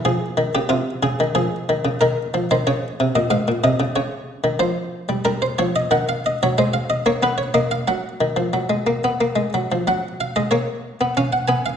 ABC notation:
X:1
M:3/4
L:1/16
Q:1/4=92
K:Ebdor
V:1 name="Harpsichord"
A3 =G F2 A2 A4 | B3 c d3 e f2 e2 | d4 c4 B c d e | [K:F#] f e d c ^B e d c =B c d e |
f8- f2 z2 | f2 e d c4 e f g e |]
V:2 name="Harpsichord" clef=bass
F,2 E, D, C,2 D, E, F,2 E, D, | E,2 F, E, D,2 C, B,, A,, B,, C, D, | D,3 E, F,3 =G, G,2 F,2 | [K:F#] D,3 F, G,3 A, B,2 A,2 |
F,2 D, E, F, G, A, B, A, G, F, E, | F,3 G, A,3 B, C2 B,2 |]